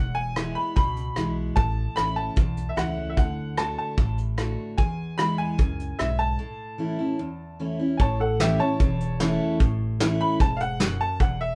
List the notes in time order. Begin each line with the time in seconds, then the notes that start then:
Already playing: E1 E2 F#5
0.15 G#5
0.36 E3 G#3 B3 E4, cross-stick, closed hi-hat
0.55 B5
0.76 C#2 B2 B5, kick, closed hi-hat
0.97 closed hi-hat
1.16 B1 E3 G#3 B3 E4, cross-stick, closed hi-hat
1.56 A1 A2 A5, kick, closed hi-hat
1.96 A1 E3 A3 C#4 E4 B5, cross-stick, closed hi-hat
2.16 A5
2.36 B1 E2, kick, closed hi-hat
2.57 closed hi-hat
2.69 E5
2.76 C#2 E3 A3 C#4 E4 F#5, cross-stick, closed hi-hat
3.10 E5
3.17 D2 D3 F#5, kick, closed hi-hat
3.58 D3 A3 D4 F#4 A5, cross-stick, closed hi-hat
3.79 A5
3.98 A1 A2, kick, closed hi-hat
4.18 closed hi-hat
4.37 D3 A3 D4 F#4, cross-stick, closed hi-hat
4.78 E2 G#5, kick, closed hi-hat
5.18 E3 G#3 B3 E4 B5, cross-stick, closed hi-hat
5.38 G#5
5.58 C#2 F#2, kick, closed hi-hat
5.79 closed hi-hat
5.99 B1 G#2 E5, cross-stick, closed hi-hat
6.19 A5
6.39 A2
6.78 E3 A3 C#4 E4
6.99 C#4 E4
7.19 E2
7.59 E3 A3 C#4 E4
7.79 C#4 E4
7.97 A1 A2 C#5 G#5 A5, kick, closed hi-hat
8.20 A4 F#5
8.40 E3 A3 C#4 E4 G4 E5, snare, closed hi-hat
8.59 C#4 E4 C#5 A5
8.80 E1 E2, kick, closed hi-hat
9.00 closed hi-hat
9.20 E3 A3 C#4 E4, snare, closed hi-hat
9.60 A1 A2, kick, closed hi-hat
10.00 E3 A3 C#4 E4, snare, closed hi-hat
10.21 B5
10.40 E1 G#2 A5, kick, closed hi-hat
10.57 F5, closed hi-hat
10.61 F#5
10.80 F#2, snare, closed hi-hat
11.01 A5
11.20 E1 E2 F#5, kick, closed hi-hat
11.41 E5